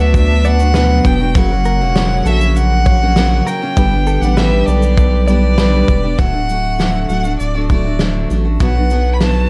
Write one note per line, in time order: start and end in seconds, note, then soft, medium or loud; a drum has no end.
0.00 1.01 D2 medium
0.00 0.44 F#3 medium
0.00 3.73 F#3 medium
0.00 0.44 B3 medium
0.00 1.33 B3 medium
0.00 0.45 D4 medium
0.00 1.33 D4 medium
0.00 0.47 F#4 medium
0.00 0.15 E5 medium
0.14 0.47 E5 loud
0.14 kick medium
0.14 shaker medium
0.44 0.59 F#3 medium
0.44 0.60 B3 medium
0.44 0.60 D4 medium
0.44 0.58 F#4 medium
0.44 0.59 D5 medium
0.44 1.08 F#5 loud
0.44 shaker soft
0.59 0.75 B3 soft
0.59 0.75 D4 soft
0.59 0.75 F#4 medium
0.59 shaker medium
0.74 1.05 B2 medium
0.74 1.03 F#3 medium
0.74 1.05 B3 medium
0.74 1.05 D4 loud
0.74 1.06 F#4 medium
0.74 1.17 B4 medium
0.74 snare loud
0.74 shaker medium
1.05 1.37 E1 medium
1.05 1.20 F#3 medium
1.05 1.20 B3 medium
1.05 1.20 D4 medium
1.05 1.18 F#4 medium
1.05 1.38 G5 medium
1.05 kick medium
1.05 shaker medium
1.20 1.36 B3 soft
1.20 1.36 D4 soft
1.20 1.35 F#4 medium
1.35 1.82 F#1 loud
1.35 1.50 F#2 medium
1.35 3.75 C#3 medium
1.35 1.51 C#3 medium
1.35 1.51 F#3 medium
1.35 3.74 A#3 medium
1.35 1.51 A#3 medium
1.35 1.51 C#4 medium
1.35 1.50 F#4 medium
1.35 2.28 F#5 medium
1.35 kick loud
1.35 shaker medium
1.51 1.82 F#3 soft
1.51 1.81 A#3 soft
1.51 1.81 C#4 soft
1.51 1.80 F#4 medium
1.65 1.80 A#4 medium
1.65 shaker soft
1.81 2.22 E1 medium
1.81 1.96 F#3 soft
1.81 1.97 A#3 medium
1.81 1.96 C#4 medium
1.81 1.96 F#4 medium
1.96 2.26 F#2 medium
1.96 2.26 C#3 medium
1.96 2.25 F#3 medium
1.96 2.26 A#3 medium
1.96 2.27 C#4 medium
1.96 2.27 F#4 medium
1.96 2.24 C#5 medium
1.96 snare loud
1.96 shaker medium
2.25 3.42 A#1 medium
2.25 2.85 F#3 medium
2.25 2.87 A#3 medium
2.25 2.87 C#4 medium
2.25 2.88 F#4 medium
2.25 2.40 A4 medium
2.25 2.58 E5 loud
2.25 shaker medium
2.41 shaker medium
2.56 3.49 F#5 loud
2.56 shaker medium
2.86 3.01 F#3 medium
2.86 3.02 A#3 medium
2.86 3.02 C#4 medium
2.86 3.01 F#4 medium
2.86 3.00 C#5 medium
2.86 kick loud
2.86 shaker soft
3.02 3.17 F#3 soft
3.02 3.17 A#3 soft
3.02 3.17 C#4 soft
3.02 3.17 F#4 medium
3.16 3.47 F#2 medium
3.16 3.47 C#3 medium
3.16 3.45 F#3 medium
3.16 3.46 A#3 loud
3.16 3.47 C#4 medium
3.16 3.48 F#4 medium
3.16 snare loud
3.16 shaker medium
3.46 3.61 F#3 medium
3.46 3.62 A#3 medium
3.46 3.61 C#4 medium
3.46 3.60 F#4 medium
3.46 3.61 A#4 medium
3.46 4.23 G5 medium
3.46 shaker medium
3.62 3.77 F#3 soft
3.62 3.77 A#3 soft
3.62 3.77 C#4 soft
3.62 3.77 F#4 medium
3.77 4.18 G1 medium
3.77 3.92 G2 medium
3.77 3.92 D3 medium
3.77 6.16 D3 medium
3.77 6.16 G3 medium
3.77 3.92 G3 medium
3.77 6.16 B3 medium
3.77 3.92 B3 medium
3.77 3.92 D4 medium
3.77 6.16 G4 loud
3.77 3.90 G4 medium
3.77 kick loud
3.77 shaker medium
3.91 4.23 G3 soft
3.91 4.23 B3 soft
3.91 4.22 D4 soft
3.91 4.21 G4 soft
4.07 4.21 A4 medium
4.07 shaker medium
4.21 4.63 A1 medium
4.21 4.37 G3 soft
4.21 4.37 B3 medium
4.21 4.37 D4 soft
4.21 4.37 G4 medium
4.21 4.39 F#5 medium
4.21 shaker medium
4.37 4.67 G2 medium
4.37 4.67 D3 medium
4.37 4.66 G3 medium
4.37 4.67 B3 medium
4.37 4.68 D4 medium
4.37 4.68 G4 medium
4.37 4.68 B4 medium
4.37 4.68 E5 medium
4.37 snare loud
4.37 shaker medium
4.67 5.84 B1 medium
4.67 5.27 G3 medium
4.67 5.28 B3 medium
4.67 5.29 D4 medium
4.67 5.29 G4 medium
4.67 4.82 A4 medium
4.67 5.27 D5 medium
4.67 shaker medium
4.82 shaker medium
4.97 kick medium
4.97 shaker medium
5.28 5.58 G3 medium
5.28 5.58 B3 medium
5.28 5.58 D4 medium
5.28 5.59 G4 medium
5.28 5.42 D5 medium
5.28 6.19 D5 loud
5.28 shaker soft
5.58 5.88 G2 medium
5.58 5.88 D3 medium
5.58 5.87 G3 loud
5.58 5.87 B3 medium
5.58 5.88 D4 loud
5.58 5.89 G4 loud
5.58 6.00 B4 medium
5.58 snare loud
5.58 shaker medium
5.88 6.16 E1 medium
5.88 6.03 G3 medium
5.88 6.03 B3 medium
5.88 6.02 G4 medium
5.88 kick loud
5.88 shaker medium
6.03 6.19 G3 soft
6.03 6.19 B3 soft
6.03 6.19 D4 medium
6.03 6.18 G4 medium
6.18 7.05 D1 medium
6.18 6.33 D3 medium
6.18 6.34 F#3 medium
6.18 6.34 A3 medium
6.18 6.33 D4 medium
6.18 6.32 F#4 medium
6.18 7.08 F#5 loud
6.18 kick loud
6.18 shaker medium
6.33 6.48 A3 soft
6.33 6.49 D4 soft
6.33 6.48 F#4 soft
6.49 6.78 F#3 soft
6.49 6.79 A3 medium
6.49 6.79 D4 medium
6.49 6.79 F#4 medium
6.49 shaker medium
6.79 7.09 D3 medium
6.79 7.08 F#3 medium
6.79 7.10 A3 medium
6.79 7.10 D4 medium
6.79 7.10 F#4 medium
6.79 snare medium
6.79 shaker medium
7.08 7.37 D1 medium
7.08 7.24 F#3 medium
7.08 7.25 A3 medium
7.08 7.25 D4 medium
7.08 7.23 F#4 medium
7.08 7.37 F#5 loud
7.08 shaker soft
7.24 7.56 A3 soft
7.24 7.55 D4 soft
7.24 7.54 F#4 soft
7.24 shaker medium
7.40 8.26 D1 loud
7.40 7.68 D5 medium
7.40 shaker medium
7.55 7.70 A3 soft
7.55 7.70 D4 soft
7.55 7.70 F#4 soft
7.70 7.85 F#3 medium
7.70 7.85 A3 medium
7.70 7.85 D4 medium
7.70 7.84 F#4 medium
7.70 8.26 D5 medium
7.70 kick medium
7.70 shaker soft
7.85 8.00 A3 soft
7.85 8.00 D4 soft
7.85 8.00 F#4 soft
7.99 8.30 D3 medium
7.99 8.29 F#3 medium
7.99 8.30 A3 medium
7.99 8.30 D4 medium
7.99 8.31 F#4 medium
7.99 snare loud
7.99 shaker medium
8.30 8.58 A1 medium
8.30 8.45 F#3 medium
8.30 8.46 A3 medium
8.30 8.45 D4 medium
8.30 8.44 F#4 medium
8.30 shaker medium
8.45 8.61 A3 soft
8.45 8.61 D4 soft
8.45 8.60 F#4 soft
8.60 9.47 B1 medium
8.60 8.76 B2 medium
8.60 8.76 F#3 medium
8.60 8.76 B3 medium
8.60 8.76 D4 medium
8.60 8.74 F#4 medium
8.60 9.15 F#5 medium
8.60 kick loud
8.60 shaker medium
8.75 8.91 B3 soft
8.75 8.91 D4 soft
8.75 8.90 F#4 soft
8.90 9.20 F#3 medium
8.90 9.21 B3 medium
8.90 9.21 D4 medium
8.90 9.21 F#4 medium
8.90 shaker soft
9.14 9.23 B5 medium
9.21 9.50 B2 medium
9.21 9.49 F#3 medium
9.21 9.50 B3 medium
9.21 9.50 D4 medium
9.21 9.50 F#4 medium
9.21 9.50 A5 medium
9.21 snare medium
9.21 shaker medium